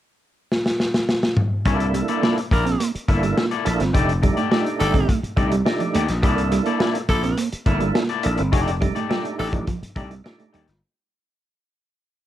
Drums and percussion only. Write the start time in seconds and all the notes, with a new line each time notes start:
0.52 snare
0.66 snare
0.80 snare
0.94 snare
1.09 snare
1.23 snare
1.37 mid tom
1.65 kick, closed hi-hat
1.80 closed hi-hat
1.94 closed hi-hat
2.08 closed hi-hat
2.23 snare
2.38 closed hi-hat
2.51 kick, closed hi-hat
2.66 closed hi-hat
2.80 closed hi-hat
2.95 closed hi-hat
3.08 kick, closed hi-hat
3.23 closed hi-hat
3.38 snare
3.51 closed hi-hat
3.66 closed hi-hat
3.80 snare, closed hi-hat
3.95 kick, closed hi-hat
4.09 closed hi-hat
4.23 kick, closed hi-hat
4.37 closed hi-hat
4.52 snare
4.66 closed hi-hat
4.80 closed hi-hat
4.94 kick, closed hi-hat
5.09 kick, closed hi-hat
5.24 closed hi-hat
5.37 kick, closed hi-hat
5.51 closed hi-hat
5.66 snare
5.80 closed hi-hat
5.94 closed hi-hat
6.08 snare, closed hi-hat
6.23 kick, closed hi-hat
6.38 closed hi-hat
6.52 closed hi-hat
6.66 closed hi-hat
6.80 snare
6.95 closed hi-hat
7.09 kick, closed hi-hat
7.23 closed hi-hat
7.37 closed hi-hat
7.52 closed hi-hat
7.66 kick, closed hi-hat
7.80 closed hi-hat
7.95 snare
8.09 closed hi-hat
8.23 closed hi-hat
8.38 closed hi-hat
8.53 kick, closed hi-hat
8.67 closed hi-hat
8.82 kick, closed hi-hat
8.96 closed hi-hat
9.11 snare
9.25 closed hi-hat
9.39 open hi-hat
9.53 kick, closed hi-hat
9.67 kick, closed hi-hat
9.83 closed hi-hat
9.96 kick, closed hi-hat
10.11 closed hi-hat
10.26 snare
10.40 closed hi-hat
10.54 closed hi-hat
10.68 snare, closed hi-hat